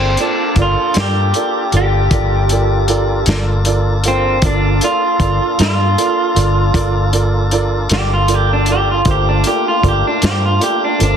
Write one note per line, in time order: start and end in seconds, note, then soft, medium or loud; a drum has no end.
0.00 0.15 G1 medium
0.00 4.40 A#3 medium
0.00 0.18 C4 medium
0.00 4.40 D4 medium
0.00 0.10 F4 medium
0.00 4.40 F4 medium
0.00 4.40 A4 medium
0.17 0.57 D4 medium
0.17 0.48 F4 soft
0.17 0.48 A4 soft
0.17 0.49 A#4 soft
0.17 0.49 C5 soft
0.17 closed hi-hat medium
0.56 0.75 G1 medium
0.56 0.86 F4 soft
0.56 0.87 A4 soft
0.56 0.87 A#4 soft
0.56 0.87 D5 medium
0.56 kick medium
0.56 closed hi-hat soft
0.62 0.97 F4 medium
0.94 1.32 G2 medium
0.94 1.25 F4 soft
0.94 1.25 A4 soft
0.94 1.25 A#4 soft
0.94 1.26 D5 soft
0.94 snare medium
0.94 closed hi-hat medium
1.00 1.73 G4 medium
1.34 1.64 F4 soft
1.34 1.64 A4 soft
1.34 1.64 A#4 soft
1.34 1.64 D5 medium
1.34 closed hi-hat medium
1.72 2.09 G1 medium
1.72 2.02 F4 soft
1.72 2.03 A4 soft
1.72 2.02 A#4 soft
1.72 2.03 D5 soft
1.72 closed hi-hat medium
1.77 3.25 G4 medium
2.11 3.23 G1 medium
2.11 2.41 F4 medium
2.11 2.41 A4 soft
2.11 2.41 A#4 soft
2.11 2.41 D5 medium
2.11 kick medium
2.11 closed hi-hat medium
2.49 2.80 F4 soft
2.49 2.80 A4 soft
2.49 2.80 A#4 soft
2.49 2.80 D5 medium
2.49 closed hi-hat soft
2.88 3.18 F4 medium
2.88 3.18 A4 medium
2.88 3.18 A#4 medium
2.88 3.18 D5 medium
2.88 closed hi-hat soft
3.26 4.39 G1 medium
3.26 3.57 F4 medium
3.26 3.57 A4 soft
3.26 3.57 A#4 soft
3.26 3.57 D5 medium
3.26 snare medium
3.26 closed hi-hat medium
3.65 3.95 F4 medium
3.65 3.95 A4 medium
3.65 3.95 A#4 medium
3.65 3.95 D5 medium
3.65 closed hi-hat medium
4.04 4.34 F4 soft
4.04 4.34 A4 soft
4.04 4.34 A#4 soft
4.04 4.34 F5 medium
4.04 closed hi-hat medium
4.08 4.44 C4 medium
4.41 4.79 G1 medium
4.41 9.02 A#3 medium
4.41 9.02 D4 medium
4.41 9.02 F4 medium
4.41 4.73 F4 medium
4.41 9.02 A4 medium
4.41 4.73 A4 medium
4.41 4.73 A#4 medium
4.41 4.73 D5 medium
4.41 kick medium
4.41 closed hi-hat medium
4.46 4.82 D4 medium
4.81 5.11 F4 soft
4.81 5.58 F4 medium
4.81 5.11 A4 soft
4.81 5.11 A#4 soft
4.81 5.12 D5 medium
4.81 closed hi-hat medium
5.20 5.38 G1 medium
5.20 5.50 F4 soft
5.20 5.50 A4 soft
5.20 5.50 A#4 soft
5.20 5.50 D5 medium
5.20 kick medium
5.20 closed hi-hat soft
5.59 5.95 G2 medium
5.59 5.88 F4 soft
5.59 7.10 F4 medium
5.59 5.88 A4 soft
5.59 5.89 A#4 soft
5.59 5.89 D5 soft
5.59 snare medium
5.59 closed hi-hat medium
5.98 6.27 F4 soft
5.98 6.27 A4 soft
5.98 6.27 A#4 soft
5.98 6.27 D5 medium
5.98 closed hi-hat medium
6.35 6.72 G1 medium
6.35 6.65 F4 soft
6.35 6.65 A4 soft
6.35 6.65 A#4 soft
6.35 6.65 D5 soft
6.35 closed hi-hat medium
6.74 7.87 G1 medium
6.74 7.04 F4 medium
6.74 7.04 A4 medium
6.74 7.04 A#4 medium
6.74 7.04 D5 medium
6.74 kick medium
6.74 closed hi-hat medium
7.13 7.42 F4 medium
7.13 7.42 A4 medium
7.13 7.42 A#4 medium
7.13 7.42 D5 medium
7.13 closed hi-hat soft
7.51 7.81 F4 medium
7.51 7.81 A4 medium
7.51 7.81 A#4 medium
7.51 7.82 D5 medium
7.51 closed hi-hat soft
7.89 9.03 G1 medium
7.89 8.20 F4 medium
7.89 8.20 A4 soft
7.89 8.20 A#4 soft
7.89 8.20 D5 medium
7.89 snare loud
7.89 closed hi-hat medium
7.93 8.11 G4 medium
8.14 8.34 F4 medium
8.28 8.58 F4 medium
8.28 8.58 A4 soft
8.28 8.58 A#4 medium
8.28 8.58 D5 medium
8.28 closed hi-hat medium
8.34 8.51 G4 medium
8.53 8.70 D4 medium
8.66 8.97 F4 medium
8.66 8.98 A4 soft
8.66 8.97 A#4 soft
8.66 8.98 D5 medium
8.66 closed hi-hat medium
8.72 8.89 G4 medium
8.91 9.08 F4 medium
9.05 9.42 G1 medium
9.05 11.17 A3 medium
9.05 11.17 A#3 medium
9.05 11.17 D4 medium
9.05 11.17 F4 medium
9.05 9.36 F4 medium
9.05 9.36 A4 medium
9.05 9.36 A#4 medium
9.05 9.36 C5 medium
9.05 kick medium
9.05 closed hi-hat medium
9.11 9.28 G4 medium
9.29 9.46 D4 medium
9.44 9.75 F4 medium
9.44 9.65 G4 medium
9.44 9.75 A4 soft
9.44 9.75 A#4 soft
9.44 9.75 D5 soft
9.44 closed hi-hat soft
9.68 9.85 F4 medium
9.83 10.02 G1 medium
9.83 10.13 F4 medium
9.83 10.13 A4 soft
9.83 10.13 A#4 soft
9.83 10.13 D5 medium
9.83 kick medium
9.83 closed hi-hat soft
9.89 10.05 G4 medium
10.07 10.24 D4 medium
10.22 10.58 G2 loud
10.22 10.52 F4 soft
10.22 10.43 G4 medium
10.22 10.52 A4 soft
10.22 10.52 A#4 soft
10.22 10.52 C5 soft
10.22 snare medium
10.22 closed hi-hat medium
10.46 10.63 F4 medium
10.60 10.89 F4 medium
10.60 10.81 G4 medium
10.60 10.89 A4 soft
10.60 10.90 A#4 soft
10.60 10.90 D5 medium
10.60 closed hi-hat medium
10.84 11.01 D4 medium
10.99 11.17 G1 medium
10.99 11.17 D4 medium
10.99 11.17 F4 soft
10.99 11.17 A4 soft
10.99 11.17 A#4 soft
10.99 11.17 C5 soft
10.99 closed hi-hat medium